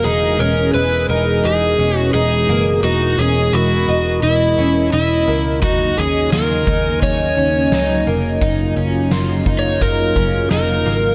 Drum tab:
HH |--------|--------|x-x-x-x-|x-x-x-x-|
SD |--------|--------|--o---o-|--o---o-|
BD |--------|--------|o--oo---|o--ooo--|